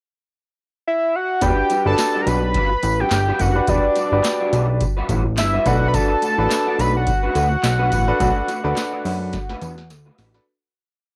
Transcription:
0.87 E5
1.15 F#5
1.41 E1 G3 D4 F#4 G4 B4 G5, kick, closed hi-hat, tambourine
1.70 G3 D4 F#4 B4, closed hi-hat, tambourine
1.85 G1 G3 D4 F#4 G4 B4 D5 A5
1.98 muted clean electric guitar stroke, snare, clap, closed hi-hat, tambourine
2.14 G3 D4 F#4 D5
2.21 A#5
2.26 B1 G3 D4 F#4 B4 B5, closed hi-hat, tambourine
2.43 muted clean electric guitar stroke
2.54 G3 D4 F#4 B4, kick, closed hi-hat
2.71 muted clean electric guitar stroke
2.83 A1, muted clean electric guitar stroke, closed hi-hat, tambourine
2.99 G3 D4 F#4 B4 G5
3.11 G1, muted clean electric guitar stroke, snare, clap, closed hi-hat, tambourine
3.27 G3 D4 F#4 B4
3.39 F#1 G3 D4 F#4 B4 F#5, kick, closed hi-hat, tambourine
3.55 D4 F#4 G4 B4, muted clean electric guitar stroke
3.67 E1 G3 D4 F#4 G4 B4 D5, kick, closed hi-hat, tambourine
3.96 G3 D4 F#4 B4, closed hi-hat, tambourine
4.12 G1 G3 D4 F#4 G4 B4 D5
4.24 muted clean electric guitar stroke, snare, clap, closed hi-hat, tambourine
4.40 G3 D4 F#4 D5
4.52 B1 G3 D4 F#4 B4, closed hi-hat, tambourine
4.68 muted clean electric guitar stroke
4.81 muted clean electric guitar stroke, kick, closed hi-hat, tambourine
4.97 G3 D4 F#4 B4
5.09 A1 G3 D4 F#4 B4, kick, closed hi-hat, tambourine
5.25 muted clean electric guitar stroke
5.37 G1 E5, muted clean electric guitar stroke, snare, clap, closed hi-hat, tambourine
5.53 G3 D4 F#4 B4
5.65 B1 A3 D4 F#4 A4 B4 F#5, kick, closed hi-hat, tambourine
5.82 muted clean electric guitar stroke
5.88 B5
5.93 A3 D4 F#4 B4 A5, kick, closed hi-hat, tambourine
6.22 A3 D4 F#4 B4, closed hi-hat, tambourine
6.38 A1 A3 D4 F#4 A4 B4 D5
6.50 muted clean electric guitar stroke, snare, clap, closed hi-hat, tambourine
6.66 A3 D4 F#4 D5
6.78 B1 A3 D4 F#4 B4 B5, closed hi-hat, tambourine
6.94 F#5, muted clean electric guitar stroke
7.07 muted clean electric guitar stroke, kick, closed hi-hat, tambourine
7.23 A3 D4 F#4 B4
7.35 D2 A3 D4 F#4 B4, closed hi-hat, tambourine
7.51 muted clean electric guitar stroke
7.63 B1, muted clean electric guitar stroke, snare, clap, closed hi-hat, tambourine
7.79 A3 D4 F#4 B4
7.91 A1 A3 D4 F#4 B4, kick, closed hi-hat, tambourine
8.07 D4 F#4 A4 B4, muted clean electric guitar stroke
8.19 B1 A3 D4 F#4 A4 B4, kick, closed hi-hat, tambourine
8.47 A3 D4 F#4 B4, closed hi-hat, tambourine
8.64 D2 A3 D4 F#4 A4 B4 D5
8.76 muted clean electric guitar stroke, snare, clap, closed hi-hat, tambourine
8.92 A3 D4 F#4 D5
9.04 F#2 A3 D4 F#4 B4, open hi-hat, tambourine
9.20 muted clean electric guitar stroke
9.33 muted clean electric guitar stroke, kick, snare, closed hi-hat, tambourine
9.49 A3 D4 F#4 B4, snare
9.62 E2 A3 D4 F#4 B4, closed hi-hat, tambourine
9.77 muted clean electric guitar stroke, snare
9.90 D2, muted clean electric guitar stroke, snare, closed hi-hat, tambourine
10.05 A3 D4 F#4 B4
10.17 A1 A3 D4 F#4 B4, snare, open hi-hat, tambourine
10.33 D4 F#4 A4 B4, muted clean electric guitar stroke, snare

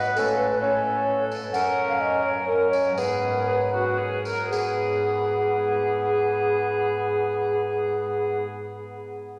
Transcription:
Already playing: G#2 B3 B4
0.05 B4
0.15 A2 C#4 A4, tambourine
0.38 B4
0.61 C#4 A4 C#5
1.32 tambourine
1.53 F#2 C#4 A#4 F#5, tambourine
1.89 F5
2.01 D#5
2.24 C#5
2.47 C#4 A#4
2.71 C#5, tambourine
2.97 G#2 B3 G#4 B4, tambourine
3.47 G#4
3.73 F#4
3.98 G#4
4.25 A#4, tambourine
4.51 G#2 B3 G#4, tambourine

